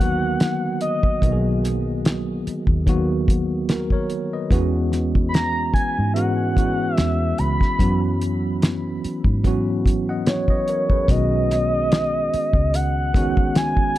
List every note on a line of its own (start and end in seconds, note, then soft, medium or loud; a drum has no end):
0.00 0.37 D#2 medium
0.00 4.53 D3 soft
0.00 0.05 D#3 medium
0.00 1.24 F#3 medium
0.00 1.24 A#3 medium
0.00 1.25 B3 medium
0.00 0.02 F#4 medium
0.00 1.11 F#4 medium
0.00 0.81 F#5 loud
0.00 closed hi-hat medium
0.05 1.13 D#3 medium
0.40 snare loud
0.40 closed hi-hat medium
0.81 1.59 D#5 medium
0.81 closed hi-hat medium
1.03 kick medium
1.22 2.42 B1 loud
1.22 2.70 D#3 medium
1.22 2.70 F#3 medium
1.22 2.71 A#3 medium
1.22 2.71 B3 medium
1.22 1.31 F#4 medium
1.22 kick medium
1.22 closed hi-hat medium
1.32 2.75 G#4 medium
1.64 snare soft
1.64 closed hi-hat medium
2.05 snare loud
2.05 closed hi-hat medium
2.47 muted fingered electric bass stroke soft
2.47 closed hi-hat medium
2.67 3.87 D#2 medium
2.67 kick medium
2.86 3.23 D#3 medium
2.86 3.24 F#3 medium
2.86 3.24 A#3 medium
2.86 3.25 B3 medium
2.86 3.25 F#4 medium
2.86 kick medium
2.86 closed hi-hat medium
3.28 kick medium
3.28 closed hi-hat medium
3.69 3.91 F#4 medium
3.69 3.91 A#4 medium
3.69 snare loud
3.69 closed hi-hat medium
3.90 4.31 A#4 medium
3.90 4.31 C#5 medium
3.90 kick medium
4.10 closed hi-hat medium
4.33 4.72 B4 soft
4.33 4.72 D#5 medium
4.50 5.71 E2 medium
4.50 5.98 E3 medium
4.50 5.99 G#3 medium
4.50 5.99 B3 medium
4.50 5.99 C#4 medium
4.50 6.00 F#4 medium
4.50 kick medium
4.50 closed hi-hat medium
4.92 snare soft
4.92 closed hi-hat medium
5.15 kick medium
5.29 5.36 B5 medium
5.34 5.73 A#5 loud
5.34 snare loud
5.34 closed hi-hat medium
5.74 6.12 G#5 medium
5.74 muted fingered electric bass stroke soft
5.74 kick medium
5.74 closed hi-hat soft
5.99 6.94 G#2 medium
6.14 6.52 E3 medium
6.14 6.52 G#3 medium
6.14 6.52 B3 medium
6.14 6.53 C#4 medium
6.14 6.53 F#4 medium
6.14 6.96 F#5 medium
6.14 closed hi-hat medium
6.55 7.66 E3 medium
6.55 7.67 G#3 medium
6.55 7.67 B3 medium
6.55 7.68 C#4 medium
6.55 7.68 F#4 medium
6.55 kick medium
6.55 closed hi-hat medium
6.96 7.32 E2 medium
6.96 7.40 E5 medium
6.96 snare loud
6.96 closed hi-hat medium
7.38 7.58 C#2 medium
7.38 8.21 B5 loud
7.38 closed hi-hat medium
7.61 kick medium
7.61 snare soft
7.79 8.99 F#2 medium
7.79 9.27 E3 medium
7.79 9.27 F#3 medium
7.79 9.27 B3 medium
7.79 9.28 C#4 medium
7.79 9.28 F#4 medium
7.79 kick medium
7.79 closed hi-hat medium
8.21 closed hi-hat medium
8.62 snare loud
8.62 closed hi-hat medium
9.04 muted fingered electric bass stroke soft
9.04 closed hi-hat soft
9.24 10.45 G#2 medium
9.24 kick medium
9.44 9.81 E3 medium
9.44 9.81 F#3 medium
9.44 9.82 B3 medium
9.44 9.82 C#4 medium
9.44 9.82 F#4 medium
9.44 kick medium
9.44 closed hi-hat medium
9.86 kick medium
9.86 closed hi-hat medium
10.09 10.48 D#5 medium
10.09 10.48 F#5 medium
10.27 11.12 C#5 medium
10.27 snare medium
10.27 closed hi-hat medium
10.48 10.68 B4 soft
10.48 10.67 D#5 medium
10.48 kick medium
10.68 10.90 A#4 soft
10.68 10.90 C#5 medium
10.68 closed hi-hat soft
10.90 11.30 G#4 medium
10.90 11.30 B4 medium
10.90 kick medium
11.08 12.28 B1 medium
11.08 12.56 D#3 medium
11.08 12.56 G#3 medium
11.08 12.56 B3 medium
11.08 12.57 C#4 medium
11.08 12.57 F#4 medium
11.08 12.76 D#5 loud
11.08 kick loud
11.08 closed hi-hat medium
11.50 snare soft
11.50 closed hi-hat medium
11.92 snare loud
11.92 closed hi-hat medium
12.34 muted fingered electric bass stroke soft
12.34 closed hi-hat medium
12.53 13.73 C#2 medium
12.53 kick medium
12.74 13.58 F#5 medium
12.74 closed hi-hat medium
13.14 13.98 D#3 medium
13.14 13.98 G#3 medium
13.14 13.98 B3 medium
13.14 13.98 C#4 medium
13.14 13.98 F#4 medium
13.14 kick loud
13.14 closed hi-hat medium
13.37 kick medium
13.55 13.98 G#5 loud
13.55 snare loud
13.55 closed hi-hat medium
13.77 kick medium